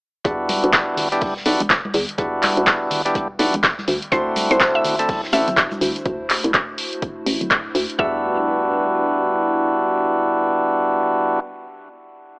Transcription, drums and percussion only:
0.25 kick, closed hi-hat, high bongo
0.49 closed hi-hat, open hi-hat, high conga
0.64 closed hi-hat
0.73 kick, snare, clap, closed hi-hat
0.97 closed hi-hat, open hi-hat, high bongo, low conga
1.12 snare, closed hi-hat
1.21 kick, closed hi-hat, open hi-hat, high conga
1.37 snare
1.46 closed hi-hat, open hi-hat
1.60 closed hi-hat
1.70 kick, snare, clap, closed hi-hat
1.85 high conga
1.94 closed hi-hat, open hi-hat, low conga
2.09 closed hi-hat
2.18 kick, closed hi-hat, high bongo
2.43 clap, closed hi-hat, open hi-hat, high conga
2.57 closed hi-hat
2.66 kick, snare, clap, closed hi-hat
2.91 closed hi-hat, open hi-hat, high bongo, low conga
3.06 snare, closed hi-hat
3.15 kick, closed hi-hat, high conga
3.39 closed hi-hat, open hi-hat, high bongo
3.54 closed hi-hat
3.63 kick, snare, clap, closed hi-hat
3.78 snare, high conga
3.88 closed hi-hat, open hi-hat, low conga
4.02 closed hi-hat
4.12 kick, closed hi-hat, high bongo, shaker
4.36 closed hi-hat, open hi-hat, high conga, shaker
4.51 closed hi-hat, shaker
4.60 kick, snare, clap, closed hi-hat, shaker
4.84 closed hi-hat, open hi-hat, high bongo, low conga, shaker
4.99 snare, closed hi-hat, shaker
5.09 kick, closed hi-hat, open hi-hat, high conga, shaker
5.24 snare
5.33 closed hi-hat, open hi-hat, shaker
5.48 closed hi-hat, shaker
5.56 kick, snare, clap, closed hi-hat, shaker
5.71 high conga, shaker
5.81 closed hi-hat, open hi-hat, low conga, shaker
5.96 closed hi-hat, shaker
6.05 kick, closed hi-hat
6.30 clap, open hi-hat
6.44 closed hi-hat
6.54 kick, clap, closed hi-hat
6.78 open hi-hat
6.93 closed hi-hat
7.02 kick, closed hi-hat
7.26 open hi-hat
7.41 closed hi-hat
7.51 kick, clap, closed hi-hat
7.75 open hi-hat
7.90 closed hi-hat
7.99 kick

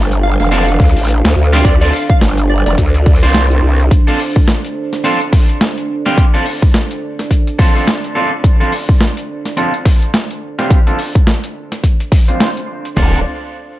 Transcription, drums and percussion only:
0.12 closed hi-hat
0.40 snare
0.52 closed hi-hat
0.68 closed hi-hat
0.80 kick, snare, open hi-hat
0.85 open hi-hat
0.89 open hi-hat
0.97 closed hi-hat, open hi-hat
0.99 open hi-hat
1.04 closed hi-hat, open hi-hat
1.25 snare, closed hi-hat
1.53 snare
1.65 kick, closed hi-hat
1.82 closed hi-hat
1.93 open hi-hat
1.96 open hi-hat
1.99 open hi-hat
2.02 open hi-hat
2.07 kick, open hi-hat
2.21 snare, closed hi-hat
2.38 closed hi-hat
2.66 snare, closed hi-hat
2.78 kick, closed hi-hat
2.95 closed hi-hat
3.06 kick, open hi-hat
3.16 open hi-hat
3.23 closed hi-hat, open hi-hat
3.34 snare, closed hi-hat
3.51 closed hi-hat
3.80 closed hi-hat
3.91 kick, closed hi-hat
4.08 closed hi-hat
4.19 open hi-hat
4.36 kick
4.48 snare, closed hi-hat
4.65 closed hi-hat
4.93 snare, closed hi-hat
5.05 closed hi-hat
5.21 closed hi-hat
5.33 kick, snare, open hi-hat
5.49 closed hi-hat
5.61 snare, closed hi-hat
5.78 closed hi-hat
6.06 snare
6.18 kick, closed hi-hat
6.34 closed hi-hat
6.46 open hi-hat
6.62 kick
6.74 snare, closed hi-hat
6.91 closed hi-hat
7.19 snare, closed hi-hat
7.31 kick, closed hi-hat
7.47 closed hi-hat
7.59 kick, open hi-hat
7.88 snare, closed hi-hat
8.04 closed hi-hat
8.44 kick, closed hi-hat
8.61 closed hi-hat
8.72 open hi-hat
8.89 kick
9.01 snare
9.17 closed hi-hat
9.45 snare, closed hi-hat
9.57 closed hi-hat
9.74 closed hi-hat
9.85 kick, snare, open hi-hat
10.02 closed hi-hat
10.14 snare, closed hi-hat
10.30 closed hi-hat
10.59 snare
10.70 kick, closed hi-hat
10.87 closed hi-hat
10.99 open hi-hat
11.15 kick, closed hi-hat
11.27 snare
11.44 closed hi-hat
11.72 snare, closed hi-hat
11.84 kick, closed hi-hat
12.00 closed hi-hat
12.12 kick, open hi-hat
12.29 closed hi-hat
12.40 snare, closed hi-hat
12.57 closed hi-hat
12.85 closed hi-hat
12.97 kick, floor tom

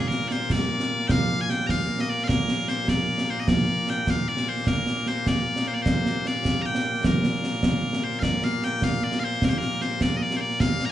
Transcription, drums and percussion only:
0.11 snare
0.21 snare
0.31 snare
0.41 snare
0.50 concert bass drum, snare
0.80 snare
1.00 snare
1.09 concert bass drum, snare
1.50 snare
1.69 concert bass drum, snare
1.89 snare
1.99 snare
2.19 snare
2.29 concert bass drum, snare
2.48 snare
2.59 snare
2.68 snare
2.78 snare
2.88 concert bass drum, snare
3.18 snare
3.38 snare
3.48 concert bass drum, snare
3.87 snare
4.07 concert bass drum, snare
4.27 snare
4.37 snare
4.57 snare
4.67 concert bass drum, snare
4.86 snare
4.97 snare
5.06 snare
5.17 snare
5.26 concert bass drum, snare
5.56 snare
5.86 concert bass drum, snare
6.06 snare
6.26 snare
6.45 concert bass drum, snare
6.65 snare
6.75 snare
6.94 snare
7.04 concert bass drum, snare
7.24 snare
7.34 snare
7.44 snare
7.53 snare
7.63 concert bass drum, snare
7.93 snare
8.12 snare
8.22 concert bass drum, snare
8.42 snare
8.62 snare
8.82 concert bass drum, snare
9.02 snare
9.12 snare
9.32 snare
9.42 concert bass drum, snare
9.61 snare
9.71 snare
9.81 snare
9.91 snare
10.01 concert bass drum, snare
10.31 snare
10.50 snare
10.60 concert bass drum, snare
10.80 snare

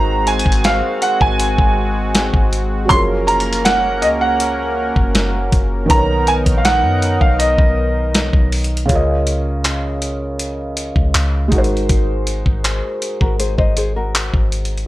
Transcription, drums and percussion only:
0.27 closed hi-hat
0.39 closed hi-hat
0.46 kick
0.52 closed hi-hat
0.64 snare, closed hi-hat
1.02 closed hi-hat
1.21 kick
1.40 closed hi-hat
1.58 kick
2.15 snare, closed hi-hat
2.34 kick
2.53 closed hi-hat
2.90 kick, closed hi-hat
3.28 closed hi-hat
3.40 closed hi-hat
3.53 closed hi-hat
3.65 snare, closed hi-hat
4.02 closed hi-hat
4.40 closed hi-hat
4.96 kick
5.15 snare, closed hi-hat
5.52 kick, closed hi-hat
5.90 kick, closed hi-hat
6.27 closed hi-hat
6.46 kick, closed hi-hat
6.65 snare, closed hi-hat
7.02 closed hi-hat
7.21 kick
7.40 closed hi-hat
7.58 kick
8.14 snare, closed hi-hat
8.33 kick
8.52 closed hi-hat, open hi-hat
8.64 closed hi-hat
8.77 closed hi-hat
8.89 kick, closed hi-hat
9.27 closed hi-hat
9.64 clap, closed hi-hat
10.02 closed hi-hat
10.39 closed hi-hat
10.77 closed hi-hat
10.96 kick
11.14 clap, closed hi-hat
11.52 kick, closed hi-hat
11.64 closed hi-hat
11.77 closed hi-hat
11.89 kick, closed hi-hat
12.27 closed hi-hat
12.46 kick
12.64 clap, closed hi-hat
13.02 closed hi-hat
13.21 kick
13.40 closed hi-hat
13.58 kick
13.77 closed hi-hat
14.15 clap, closed hi-hat
14.34 kick
14.52 closed hi-hat
14.65 closed hi-hat
14.78 closed hi-hat

